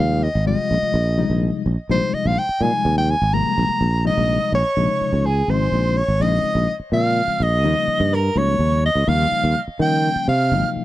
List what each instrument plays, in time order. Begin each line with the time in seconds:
Already playing: reed electric piano C3 F3 G3 G#3 F4
0.00 fretless electric bass D#2, soprano saxophone F5
0.23 soprano saxophone D#5
0.35 fretless electric bass G#1
0.46 reed electric piano C3 F3 G3 G#3 F4, soprano saxophone D#5
0.59 muted fretless electric bass stroke
0.71 fretless electric bass A#1
0.83 muted fretless electric bass stroke
0.94 fretless electric bass A#1
1.18 reed electric piano C3 F3 G3 G#3 D#4
1.30 fretless electric bass A#1
1.66 fretless electric bass A#1
1.89 fretless electric bass A#1, reed electric piano C3 F3 G3 G#3 D#4, soprano saxophone C5
2.14 soprano saxophone D#5, muted fretless electric bass stroke
2.25 fretless electric bass A#1, soprano saxophone F5
2.39 soprano saxophone G5
2.49 muted fretless electric bass stroke
2.61 fretless electric bass A#2, reed electric piano C3 F3 G3 G#3 D#4, soprano saxophone G#5
2.85 fretless electric bass D#2
2.98 soprano saxophone G5
3.10 soprano saxophone G#5
3.22 fretless electric bass G#1
3.33 reed electric piano C3 F3 G3 G#3 A#3, soprano saxophone A#5
3.46 muted fretless electric bass stroke
3.58 fretless electric bass A#1
3.69 muted fretless electric bass stroke
3.81 fretless electric bass A#1
4.05 reed electric piano C3 F3 G3 G#3 D#4, soprano saxophone D#5, flute D#6
4.18 fretless electric bass A#1
4.52 fretless electric bass A#1, soprano saxophone C#5, flute C#6
4.77 fretless electric bass A#1, reed electric piano C3 C#3 F3 G#3 D#4
5.01 muted fretless electric bass stroke
5.13 fretless electric bass C#2
5.26 soprano saxophone G#4, flute G#5
5.48 fretless electric bass G#1, reed electric piano C#3 F3 G#3 C4 D#4, soprano saxophone C5, flute C6
5.72 fretless electric bass A#1
5.97 soprano saxophone C#5, flute C#6
6.08 fretless electric bass G#1
6.20 fretless electric bass A#1, reed electric piano C#3 F3 G#3 C4 D#4, soprano saxophone D#5, flute D#6
6.44 muted fretless electric bass stroke
6.55 fretless electric bass A#1
6.80 muted fretless electric bass stroke
6.92 fretless electric bass A#2, reed electric piano C#3 F3 G#3 C4 F4, soprano saxophone F5, flute F6
7.28 muted fretless electric bass stroke
7.40 fretless electric bass A#1, soprano saxophone D#5, flute D#6
7.64 fretless electric bass D#2, reed electric piano C#3 F3 G3 A#3 D#4
7.88 muted fretless electric bass stroke
8.00 fretless electric bass G2
8.14 soprano saxophone A#4, flute A#5
8.36 fretless electric bass C#2, reed electric piano C#3 F3 G3 A#3 D#4, soprano saxophone C#5, flute C#6
8.59 fretless electric bass D#2
8.86 soprano saxophone D#5, flute D#6
8.95 fretless electric bass C#2
9.07 fretless electric bass D#2, reed electric piano C#3 F3 G3 A#3 D#4, soprano saxophone F5, flute F6
9.32 muted fretless electric bass stroke
9.44 fretless electric bass D#2
9.68 muted fretless electric bass stroke
9.79 reed electric piano C#3 F3 G3 A#3 C#4, fretless electric bass D#3, soprano saxophone G5, flute G6
10.16 muted fretless electric bass stroke
10.28 fretless electric bass C3, soprano saxophone F5, flute F6
10.51 fretless electric bass G#1, reed electric piano C3 F3 F#3 A#3 D#4
10.76 muted fretless electric bass stroke